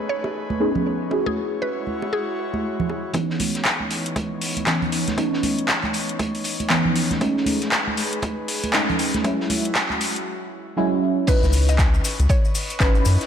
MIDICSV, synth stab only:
0, 0, Header, 1, 2, 480
1, 0, Start_track
1, 0, Key_signature, 4, "minor"
1, 0, Tempo, 508475
1, 1048, Time_signature, 4, 2, 24, 8
1, 12522, End_track
2, 0, Start_track
2, 0, Title_t, "Synth stab"
2, 0, Program_c, 0, 62
2, 0, Note_on_c, 0, 57, 81
2, 0, Note_on_c, 0, 59, 74
2, 0, Note_on_c, 0, 61, 74
2, 0, Note_on_c, 0, 63, 74
2, 0, Note_on_c, 0, 68, 89
2, 540, Note_off_c, 0, 57, 0
2, 542, Note_off_c, 0, 59, 0
2, 545, Note_off_c, 0, 61, 0
2, 547, Note_off_c, 0, 63, 0
2, 549, Note_off_c, 0, 68, 0
2, 563, Note_on_c, 0, 57, 92
2, 566, Note_on_c, 0, 59, 83
2, 568, Note_on_c, 0, 61, 83
2, 570, Note_on_c, 0, 63, 82
2, 572, Note_on_c, 0, 68, 102
2, 1023, Note_off_c, 0, 57, 0
2, 1024, Note_off_c, 0, 59, 0
2, 1025, Note_off_c, 0, 61, 0
2, 1026, Note_off_c, 0, 63, 0
2, 1027, Note_off_c, 0, 68, 0
2, 1039, Note_on_c, 0, 61, 80
2, 1045, Note_on_c, 0, 64, 76
2, 1051, Note_on_c, 0, 66, 76
2, 1057, Note_on_c, 0, 68, 92
2, 2461, Note_off_c, 0, 61, 0
2, 2463, Note_off_c, 0, 64, 0
2, 2466, Note_off_c, 0, 66, 0
2, 2469, Note_off_c, 0, 68, 0
2, 2958, Note_on_c, 0, 52, 82
2, 2964, Note_on_c, 0, 59, 78
2, 2970, Note_on_c, 0, 61, 76
2, 2975, Note_on_c, 0, 63, 93
2, 4380, Note_off_c, 0, 52, 0
2, 4383, Note_off_c, 0, 59, 0
2, 4386, Note_off_c, 0, 61, 0
2, 4389, Note_off_c, 0, 63, 0
2, 4403, Note_on_c, 0, 52, 94
2, 4406, Note_on_c, 0, 59, 85
2, 4409, Note_on_c, 0, 61, 85
2, 4411, Note_on_c, 0, 63, 105
2, 4862, Note_off_c, 0, 52, 0
2, 4864, Note_off_c, 0, 59, 0
2, 4865, Note_off_c, 0, 61, 0
2, 4867, Note_off_c, 0, 63, 0
2, 4878, Note_on_c, 0, 52, 82
2, 4883, Note_on_c, 0, 59, 78
2, 4889, Note_on_c, 0, 61, 78
2, 4894, Note_on_c, 0, 63, 92
2, 6300, Note_off_c, 0, 52, 0
2, 6302, Note_off_c, 0, 59, 0
2, 6305, Note_off_c, 0, 61, 0
2, 6308, Note_off_c, 0, 63, 0
2, 6323, Note_on_c, 0, 52, 96
2, 6326, Note_on_c, 0, 59, 87
2, 6329, Note_on_c, 0, 61, 87
2, 6332, Note_on_c, 0, 63, 102
2, 6783, Note_off_c, 0, 52, 0
2, 6784, Note_off_c, 0, 59, 0
2, 6785, Note_off_c, 0, 61, 0
2, 6787, Note_off_c, 0, 63, 0
2, 6799, Note_on_c, 0, 56, 85
2, 6805, Note_on_c, 0, 57, 78
2, 6810, Note_on_c, 0, 61, 76
2, 6816, Note_on_c, 0, 63, 94
2, 8220, Note_off_c, 0, 56, 0
2, 8223, Note_off_c, 0, 57, 0
2, 8226, Note_off_c, 0, 61, 0
2, 8229, Note_off_c, 0, 63, 0
2, 8243, Note_on_c, 0, 56, 95
2, 8245, Note_on_c, 0, 57, 88
2, 8248, Note_on_c, 0, 61, 87
2, 8251, Note_on_c, 0, 63, 103
2, 8702, Note_off_c, 0, 56, 0
2, 8704, Note_off_c, 0, 57, 0
2, 8705, Note_off_c, 0, 61, 0
2, 8707, Note_off_c, 0, 63, 0
2, 8720, Note_on_c, 0, 54, 86
2, 8725, Note_on_c, 0, 56, 77
2, 8730, Note_on_c, 0, 61, 79
2, 8736, Note_on_c, 0, 64, 96
2, 10141, Note_off_c, 0, 54, 0
2, 10143, Note_off_c, 0, 56, 0
2, 10146, Note_off_c, 0, 61, 0
2, 10149, Note_off_c, 0, 64, 0
2, 10163, Note_on_c, 0, 54, 96
2, 10166, Note_on_c, 0, 56, 86
2, 10169, Note_on_c, 0, 61, 87
2, 10171, Note_on_c, 0, 64, 104
2, 10623, Note_off_c, 0, 54, 0
2, 10624, Note_off_c, 0, 56, 0
2, 10625, Note_off_c, 0, 61, 0
2, 10627, Note_off_c, 0, 64, 0
2, 10640, Note_on_c, 0, 61, 85
2, 10646, Note_on_c, 0, 63, 78
2, 10651, Note_on_c, 0, 64, 79
2, 10657, Note_on_c, 0, 71, 94
2, 12061, Note_off_c, 0, 61, 0
2, 12064, Note_off_c, 0, 63, 0
2, 12067, Note_off_c, 0, 64, 0
2, 12070, Note_off_c, 0, 71, 0
2, 12084, Note_on_c, 0, 61, 98
2, 12087, Note_on_c, 0, 63, 85
2, 12090, Note_on_c, 0, 64, 87
2, 12093, Note_on_c, 0, 71, 107
2, 12522, Note_off_c, 0, 61, 0
2, 12522, Note_off_c, 0, 63, 0
2, 12522, Note_off_c, 0, 64, 0
2, 12522, Note_off_c, 0, 71, 0
2, 12522, End_track
0, 0, End_of_file